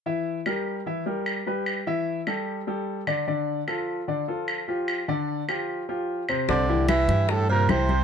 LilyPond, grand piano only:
\new Staff \with { instrumentName = "Grand piano" } { \time 4/4 \key c \mixolydian \tempo 4 = 149 <e e' e''>4 <g g' bes'>4 <e e' e''>8 <g g' bes'>4 <g g' b'>8~ | <g g' b'>8 <e e' e''>4 <g g' a'>4 <g g' a'>4 <d d' d''>8 | <d d' d''>4 <f f' a'>4 <d d' d''>8 <f f' a'>4 <f f' g'>8~ | <f f' g'>8 <d d' d''>4 <f f' g'>4 <f f' g'>4 <c c' c''>8 |
<c c' c''>8 <e e' g'>4 <e e' g'>4 <c c' c''>8 <e e' g'>8 <c c' c''>8 | }